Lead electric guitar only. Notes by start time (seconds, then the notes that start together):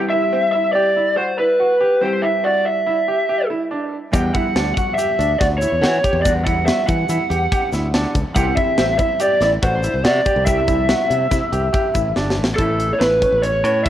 0.10 E5
0.52 E5
0.73 D5
1.17 C5
1.39 B4
2.01 C5
2.22 E5
2.44 D5
2.65 E5
4.14 G5
4.35 F#5
4.75 F#5
4.95 E5
5.38 D5
5.58 C#5
6.22 D5
6.45 F#5
6.66 E5
6.88 F#5
8.36 F#5
8.56 E5
8.99 E5
9.21 D5
9.43 D5
9.64 C5
10.05 D5
10.46 E5
12.56 A4
12.93 C#5
12.99 B4
13.42 C#5
13.84 E5